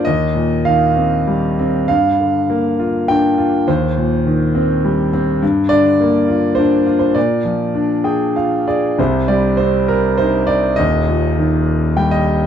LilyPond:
<<
  \new Staff \with { instrumentName = "Grand piano" } { \time 3/4 \key ees \major \tempo 4 = 101 << { r2. | r2. | r2. | r2. |
r4. g''8 f''8 d''8 | \key c \minor r2. | r2 g''16 ees''8. | } \\ { ees''4 f''4. r8 | f''2 g''4 | c''2~ c''8 r8 | r8 d''4. c''8. c''16 |
d''2 r4 | c''8 d''8 c''8 bes'8 c''8 d''8 | ees''2 r4 | } >> }
  \new Staff \with { instrumentName = "Grand piano" } { \clef bass \time 3/4 \key ees \major ees,8 bes,8 ees8 c'8 g8 c'8 | g,8 d8 bes8 f'8 d'8 f'8 | ees,8 bes,8 ees8 c'8 g8 c'8 | g,8 d8 bes8 f'8 d'8 f'8 |
bes,8 f8 d'8 aes'8 f'8 aes'8 | \key c \minor <c, c>8 g8 c'4 ees'4 | <ees,, ees,>8 bes,8 ees4 g4 | }
>>